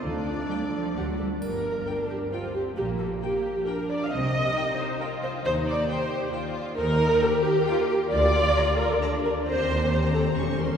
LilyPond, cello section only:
\new Staff \with { instrumentName = "Cello section" } { \clef bass \time 3/4 \key g \minor \tempo 4 = 134 d4 g8 f8 fis8 g8 | g,4 r2 | bes,4 r2 | c4 r2 |
ees,4 r2 | \key c \dorian ees,4 r2 | d,4 r2 | ees,2 e,4 | }